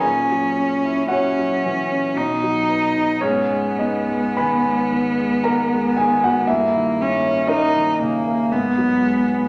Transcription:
<<
  \new Staff \with { instrumentName = "Cello" } { \time 3/4 \key gis \minor \tempo 4 = 58 cis'4 cis'4 dis'4 | b2. | ais8 cis'8 dis'8 ais8 b4 | }
  \new Staff \with { instrumentName = "Grand piano" } { \time 3/4 \key gis \minor <gis' gis''>4 <fis' cis'' fis''>2 | <cis' gis' cis''>8 <dis' dis''>8 <b' gis'' b''>4 <ais' ais''>8 <gis' gis''>16 <fis' fis''>16 | <e' e''>4 <dis' ais' dis''>2 | }
  \new Staff \with { instrumentName = "Grand piano" } { \clef bass \time 3/4 \key gis \minor ais,16 fis16 cis'16 e'16 cis'16 fis16 e16 cis'16 b,16 fis16 b16 dis'16 | gis,16 gis16 b16 gis16 dis16 gis16 dis16 gis16 dis16 gis16 dis16 gis16 | g,16 dis16 ais16 cis'16 ais16 dis16 cis16 ais16 gis,16 fis16 gis16 b16 | }
>>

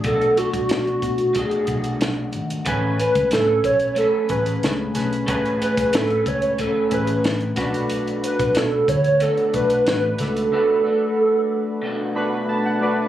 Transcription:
<<
  \new Staff \with { instrumentName = "Soft synth lead" } { \time 4/4 \key b \dorian \tempo 4 = 92 a'8 fis'8 fis'4 gis'4. r8 | r8 b'8 a'8 cis''8 a'8 b'8 r4 | r8 b'8 a'8 cis''8 a'8 b'8 r4 | r8 b'8 a'8 cis''8 a'8 b'8 b'8 a'8~ |
a'2. r4 | }
  \new Staff \with { instrumentName = "Synth keys" } { \time 4/4 \key b \dorian << { r1 | r1 | r1 | r1 |
r2 r8 b''8 a''16 fis''16 d''8 | } \\ { r1 | <a b cis' b' gis''>4. r4 <a cis' gis' b'>8. r16 <a cis' gis' b'>8 | <a cis' b' gis''>4. r4 <a cis' gis' b'>8. r16 <a cis' d' fis' b'>8~ | <a cis' d' fis' b'>4 r4. <a d' fis' b'>8. r16 <a d' fis' b'>8 |
<a d' fis' b'>4. r4 <a d' fis' b'>8. r16 <a d' fis' b'>8 | } >> }
  \new Staff \with { instrumentName = "Clean electric guitar" } { \time 4/4 \key b \dorian <b, a d' fis'>8 <a d' fis'>4. <b, a d' fis'>2 | <a cis' gis' b'>8 <cis' b'>4. <a cis' b'>2 | <a cis' gis' b'>4 <a cis' b'>4 <a cis' b'>4. <b, a d' fis'>8~ | <b, a d' fis'>2 <b, a d' fis'>2 |
<b, a d' fis'>8 <a d' fis'>4. <b, a d' fis'>2 | }
  \new Staff \with { instrumentName = "Fingered electric bass" } { \clef bass \time 4/4 \key b \dorian b,,8. b,,16 b,8 b,8. r16 b,,8 b,,8 gis,,8 | a,,8. cis,16 a,8 b,,8. r16 a,,8 cis,8 b,,8 | a,,4 a,8 cis,8. r16 a,,8 a,,8 b,,8~ | b,,8. b,,16 b,8 d,8. r16 b,,8 a,,8 cis,8 |
r1 | }
  \new DrumStaff \with { instrumentName = "Drums" } \drummode { \time 4/4 <hh bd>16 hh16 hh16 <hh bd>16 <hh sn>16 hh16 <hh bd>16 hh16 <hh bd>16 hh16 <hh bd>16 hh16 <hh sn>8 hh16 hh16 | <hh bd>8 hh16 <hh bd>16 <hh sn>8 <hh bd>16 hh16 hh8 <hh bd>16 hh16 <hh sn>8 <hh sn>16 hh16 | <hh bd>16 hh16 hh16 <hh bd>16 <hh sn>16 hh16 <hh bd>16 hh16 <hh bd>8 <hh bd>16 hh16 <hh sn>16 hh16 <hh bd sn>16 hh16 | hh16 hh16 hh16 <hh bd>16 <hh sn>8 <hh bd>16 hh16 hh16 hh16 <hh bd>16 hh16 <hh sn>8 <hh sn>16 hh16 |
r4 r4 r4 r4 | }
>>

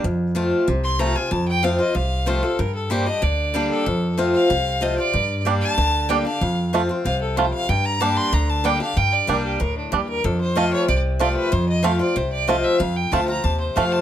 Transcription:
<<
  \new Staff \with { instrumentName = "Fiddle" } { \time 4/4 \key f \mixolydian \tempo 4 = 188 r2 r8 c'''8 bes''8 aes''8 | a''8 g''8 f''8 ees''8 f''4 c''8 a'8 | bes'8 a'8 c''8 ees''8 d''4. a'8~ | a'4 r8 f''4. ees''8 d''8~ |
d''4 r8 a''4. g''8 f''8~ | f''4 r4 f''8 a'8 c''8 f''8 | g''8 bes''8 a''8 c'''8 bes''8 a''8 g''8 f''8 | g''8 d''8 bes'8 g'8 bes'8 d'8 g'8 bes'8 |
a'8 c''8 ees''8 cis''8 d''8 r8 d''8 b'8 | c''8 ees''8 f''8 d''8 c''8 d''8 ees''8 e''8 | f''8 g''8 a''8 bes''8 a''8 c''8 f''8 a''8 | }
  \new Staff \with { instrumentName = "Five-string banjo" } { \time 4/4 \key f \mixolydian r1 | r1 | r1 | r1 |
r4 <g d'>8 r4. <g d'>8 r8 | r4 <a c' f'>8 r4. <a c' f'>8 r8 | r4 <g d'>8 r4. <g d'>8 r8 | r4 <g d'>8 r4. <g d'>8 r8 |
r4 <a c' f'>8 r4. <a c' f'>8 r8 | r4 <a c' f'>8 r4. <a c' f'>8 r8 | r4 <a c' f'>8 r4. <a c' f'>8 r8 | }
  \new Staff \with { instrumentName = "Steel-string acoustic guitar" } { \time 4/4 \key f \mixolydian << { r4 <f a c' f'>4 r4 <f a c' f'>8 <c' f'>8 | r4 <f a c' f'>8 <c' f'>8 r4 <f a c' f'>8 <c' f'>8 | r4 <g bes d' g'>8 <d' g'>8 r4 <g bes d' g'>4 | r4 <f a c' f'>4 r4 <f a c' f'>8 <c' f'>8 |
r4 <g bes d' g'>4 r4 <g bes d' g'>8 <d' g'>8 | r4 <f a c' f'>8 <c' f'>8 r2 | r4 <g bes d' g'>4 r4 <g bes d' g'>8 <d' g'>8 | r4 <g bes d' g'>4 r2 |
r4 <f a c' f'>4 r4 <f a c' f'>4 | r4 <f a c' f'>8 <c' f'>8 r4 <f a c' f'>4 | r4 <f a c' f'>8 <c' f'>8 r4 <f a c' f'>4 | } \\ { f,2 c2 | f,2 c2 | g,2 d2 | f,2 c2 |
g,2 d2 | f,2 c4 f,4 | g,2 d2 | g,2 a,4 g,4 |
f,2 c2 | f,2 c2 | f,2 c2 | } >> }
  \new Staff \with { instrumentName = "Upright bass" } { \clef bass \time 4/4 \key f \mixolydian f,2 c,2 | f,2 c,2 | g,2 d,2 | f,2 c,2 |
g,2 d,2 | f,2 c,2 | g,2 d,2 | g,4 c,4 d,4 ees,4 |
f,2 c,2 | f,2 c,2 | f,4 d,4 ees,4 f,4 | }
>>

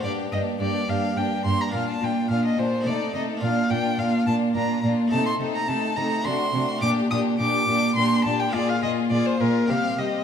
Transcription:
<<
  \new Staff \with { instrumentName = "Violin" } { \time 3/4 \key g \minor \tempo 4 = 106 d''8 ees''8 d''8 f''8 g''8 c'''16 bes''16 | f''16 a''16 g''8 f''16 ees''16 c''8 d''8 ees''8 | f''8 g''8 f''8 a''8 bes''8 r8 | a''16 c'''8 bes''16 a''8 bes''8 c'''4 |
d'''8 ees'''8 d'''4 c'''8 a''16 g''16 | d''16 f''16 ees''8 d''16 c''16 bes'8 f''8 ees''8 | }
  \new Staff \with { instrumentName = "Violin section" } { \time 3/4 \key g \minor g'8 g'8 g'8 g'8 g'8 g'8 | f'8 f'8 f'8 f'8 a'8 a'8 | f'8 f'8 f'8 f'8 f'8 f'8 | a'8 a'8 a'8 a'8 fis'8 fis'8 |
g'8 g'8 g'8 g'8 g'8 g'8 | aes'8 aes'8 aes'8 aes'8 g'8 g'8 | }
  \new Staff \with { instrumentName = "Violin section" } { \time 3/4 \key g \minor d'8 d'8 d'8 d'8 d'8 d'8 | d'8 d'8 d'8 d'8 ees'8 ees'8 | d'8 d'8 d'8 d'8 d'8 d'8 | ees'8 ees'8 ees'8 ees'8 d'8 d'8 |
d'8 d'8 d'8 d'8 d'8 d'8 | f'8 f'8 f'8 f'8 c'8 c'8 | }
  \new Staff \with { instrumentName = "Viola section" } { \time 3/4 \key g \minor bes8 bes8 bes8 bes8 bes8 bes8 | bes8 bes8 bes8 bes8 a8 a8 | bes8 bes8 bes8 bes8 bes8 bes8 | a8 a8 a8 a8 a8 a8 |
bes8 bes8 bes8 bes8 bes8 bes8 | bes8 bes8 bes8 bes8 g8 g8 | }
  \new Staff \with { instrumentName = "Harpsichord" } { \time 3/4 \key g \minor <bes d' g'>2. | <bes d' f'>2 <a ees' a'>4 | <bes d' f'>2. | <a ees' a'>2 <a d' fis'>4 |
<bes d' g'>2. | <bes f' aes'>2 <c' g'>4 | }
  \new Staff \with { instrumentName = "Harpsichord" } { \clef bass \time 3/4 \key g \minor g,8 g,8 g,8 g,8 g,8 g,8 | bes,8 bes,8 bes,8 bes,8 c8 c8 | bes,8 bes,8 bes,8 bes,8 bes,8 bes,8 | c8 c8 c8 c8 c8 c8 |
bes,8 bes,8 bes,8 bes,8 bes,8 bes,8 | bes,8 bes,8 bes,8 bes,8 c8 c8 | }
  \new Staff \with { instrumentName = "Cello section" } { \clef bass \time 3/4 \key g \minor g,8 g,8 g,8 g,8 g,8 g,8 | bes,8 bes,8 bes,8 bes,8 c8 c8 | bes,8 bes,8 bes,8 bes,8 bes,8 bes,8 | c8 c8 c8 c8 c8 c8 |
bes,8 bes,8 bes,8 bes,8 bes,8 bes,8 | bes,8 bes,8 bes,8 bes,8 c8 c8 | }
>>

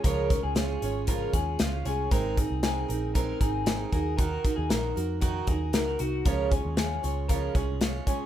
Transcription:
<<
  \new Staff \with { instrumentName = "Clean electric guitar" } { \time 4/4 \key des \major \tempo 4 = 116 bes'8. aes'16 aes'4 bes'8 aes'8 f'8 aes'8 | bes'8 aes'8 aes'4 bes'8 aes'4 aes'8 | bes'8. aes'16 bes'4 ges'8 aes'8 bes'8 ges'8 | bes'8 aes'8 aes'4 bes'8 aes'4 aes'8 | }
  \new Staff \with { instrumentName = "Steel-string acoustic guitar" } { \time 4/4 \key des \major <des f aes des' f' des''>8 <aes des' f' des''>8 <aes des' f' des''>8 <aes des' f' des''>8 <des f aes des' f' des''>8 <aes des' f' des''>8 <aes des' f' des''>8 <aes des' f' des''>8 | <aes c' ees' bes'>8 <c' ees' bes'>8 <aes c' ees' bes'>8 <c' ees' bes'>8 <aes c' ees' bes'>8 <c' ees' bes'>8 <aes c' ees' bes'>8 <ees' ges' bes'>8 | <ees ees' ges' bes'>8 <ees' ges' bes'>8 <ees ees' ges' bes'>8 <ees' ges' bes'>8 <ees ees' ges' bes'>8 <ees' ges' bes'>8 <ees ees' ges' bes'>8 <ees' ges' bes'>8 | <des f aes des' f' des''>8 <des' f' des''>8 <aes des' f' des''>8 <aes des' f' des''>8 <des f aes des' f' des''>8 <aes des' f' des''>8 <aes des' f' des''>8 <aes des' f' des''>8 | }
  \new Staff \with { instrumentName = "Picked electric bass" } { \clef bass \time 4/4 \key des \major des,8. des,8. aes,,4 ees,8 des,8 c,8 | aes,,8. c,8. bes,,4 aes,,4 ees,8~ | ees,8 r16 ees,16 bes,,8 f,4 ees,8 des,8 c,8 | des,8. ees,8. des,4 c,4 r8 | }
  \new DrumStaff \with { instrumentName = "Drums" } \drummode { \time 4/4 <hh bd>8 <hh bd>8 <hh sn>8 hh8 <hh bd>8 <hh bd>8 <hh sn>8 hh8 | <hh bd>8 <hh bd>8 <hh sn>8 hh8 <hh bd>8 <hh bd>8 <hh sn>8 <hh bd>8 | <hh bd>8 <hh bd>8 <hh sn>8 hh8 <hh bd>8 <hh bd>8 <hh sn>8 hh8 | <hh bd>8 <hh bd>8 <hh sn>8 hh8 <hh bd>8 <hh bd>8 <hh sn>8 <hh bd>8 | }
>>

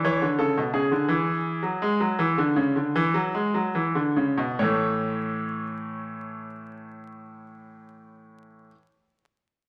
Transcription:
<<
  \new Staff \with { instrumentName = "Grand piano" } { \time 12/8 \key a \major \tempo 4. = 47 cis''8 a'8 gis'1~ gis'4 | <e a cis''>1. | }
  \new Staff \with { instrumentName = "Grand piano" } { \clef bass \time 12/8 \key a \major e16 d16 cis16 b,16 cis16 d16 e8. fis16 gis16 fis16 e16 d16 cis16 d16 e16 fis16 gis16 fis16 e16 d16 cis16 b,16 | a,1. | }
>>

